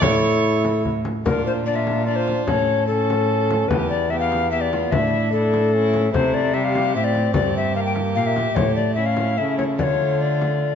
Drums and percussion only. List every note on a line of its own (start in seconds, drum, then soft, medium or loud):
0.02 frame drum medium
0.65 frame drum medium
0.85 frame drum soft
1.05 frame drum medium
1.26 frame drum medium
1.87 frame drum soft
2.28 frame drum soft
2.47 frame drum medium
3.10 frame drum soft
3.51 frame drum medium
3.71 frame drum medium
4.32 frame drum soft
4.73 frame drum medium
4.92 frame drum medium
5.54 frame drum soft
5.94 frame drum soft
6.14 frame drum medium
6.75 frame drum soft
7.15 frame drum soft
7.34 frame drum medium
7.96 frame drum soft
8.36 frame drum medium
8.56 frame drum medium
9.17 frame drum soft
9.59 frame drum medium
9.79 frame drum medium
10.42 frame drum soft